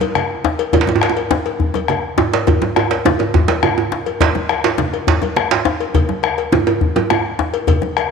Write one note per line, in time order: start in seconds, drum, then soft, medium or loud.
0.01 cowbell medium
0.01 high conga medium
0.01 djembe tone medium
0.15 bombo rim medium
0.15 cowbell soft
0.15 high conga soft
0.15 low conga medium
0.45 djembe slap medium
0.45 djembe tone medium
0.59 cowbell medium
0.59 high conga soft
0.73 bombo low medium
0.73 cowbell medium
0.73 djembe tone loud
0.73 djembe bass medium
0.73 low conga medium
0.81 djembe slap medium
0.87 bombo rim soft
0.87 djembe slap medium
0.87 djembe tone medium
0.87 high conga medium
0.87 djembe tone medium
0.95 djembe tone loud
1.02 bombo rim medium
1.02 cowbell soft
1.02 djembe slap medium
1.02 high conga soft
1.10 djembe tone medium
1.17 bombo rim soft
1.17 cowbell medium
1.31 djembe slap medium
1.31 djembe tone medium
1.31 low conga medium
1.45 bombo rim soft
1.45 cowbell soft
1.45 djembe slap soft
1.60 bombo low loud
1.60 djembe bass medium
1.74 cowbell soft
1.74 djembe slap medium
1.74 djembe tone medium
1.74 high conga medium
1.88 bombo rim medium
1.88 cowbell soft
1.88 high conga soft
1.88 low conga medium
2.18 djembe slap medium
2.18 djembe tone medium
2.33 cowbell soft
2.33 djembe slap medium
2.33 high conga soft
2.47 bombo rim soft
2.47 bombo low medium
2.47 cowbell medium
2.47 djembe tone medium
2.47 low conga medium
2.47 djembe bass medium
2.61 djembe slap medium
2.61 high conga soft
2.61 djembe tone medium
2.76 bombo rim medium
2.76 cowbell soft
2.76 djembe tone medium
2.91 cowbell soft
2.91 djembe slap medium
2.91 djembe slap soft
3.05 djembe slap medium
3.05 high conga soft
3.05 djembe tone medium
3.05 low conga medium
3.19 cowbell soft
3.19 high conga soft
3.19 djembe tone medium
3.34 bombo rim soft
3.34 bombo low loud
3.34 djembe slap soft
3.34 djembe tone loud
3.34 djembe bass medium
3.48 bombo rim soft
3.48 cowbell soft
3.48 djembe slap medium
3.48 high conga medium
3.48 djembe tone medium
3.63 bombo rim loud
3.63 cowbell soft
3.63 high conga soft
3.63 djembe tone medium
3.63 low conga medium
3.78 djembe tone medium
3.92 djembe slap medium
4.06 cowbell soft
4.06 djembe slap soft
4.06 high conga soft
4.20 bombo low loud
4.20 cowbell medium
4.20 djembe slap loud
4.20 djembe bass medium
4.20 low conga medium
4.35 bombo rim soft
4.35 djembe slap medium
4.35 djembe tone medium
4.35 high conga medium
4.49 bombo rim medium
4.49 cowbell soft
4.49 high conga soft
4.64 bombo rim soft
4.64 cowbell soft
4.64 djembe slap medium
4.78 djembe slap medium
4.78 djembe tone medium
4.78 low conga medium
4.93 bombo rim soft
4.93 cowbell soft
4.93 djembe slap soft
5.07 bombo low loud
5.07 djembe slap medium
5.07 djembe bass medium
5.22 cowbell soft
5.22 djembe slap medium
5.22 djembe tone medium
5.22 high conga medium
5.36 bombo rim loud
5.36 cowbell soft
5.36 high conga soft
5.36 low conga medium
5.51 djembe slap loud
5.65 djembe slap medium
5.65 djembe tone medium
5.80 cowbell soft
5.80 high conga soft
5.94 bombo low medium
5.94 cowbell medium
5.94 djembe bass medium
5.94 low conga medium
6.09 bombo rim soft
6.09 djembe slap medium
6.09 djembe tone medium
6.09 high conga medium
6.23 bombo rim medium
6.23 cowbell soft
6.23 high conga soft
6.38 bombo rim soft
6.38 cowbell soft
6.52 djembe slap medium
6.52 djembe tone medium
6.52 low conga medium
6.67 bombo rim soft
6.67 cowbell soft
6.67 djembe tone medium
6.81 bombo low loud
6.81 djembe bass medium
6.96 cowbell soft
6.96 djembe slap medium
6.96 djembe tone medium
6.96 high conga medium
6.96 djembe tone medium
7.10 bombo rim loud
7.10 high conga soft
7.10 djembe tone medium
7.10 low conga medium
7.39 djembe slap medium
7.39 djembe tone medium
7.54 cowbell medium
7.54 high conga soft
7.67 bombo low medium
7.67 cowbell medium
7.67 djembe bass medium
7.67 low conga medium
7.82 bombo rim soft
7.82 djembe slap medium
7.82 djembe tone medium
7.82 high conga medium
7.97 bombo rim medium
7.97 cowbell soft
7.97 high conga soft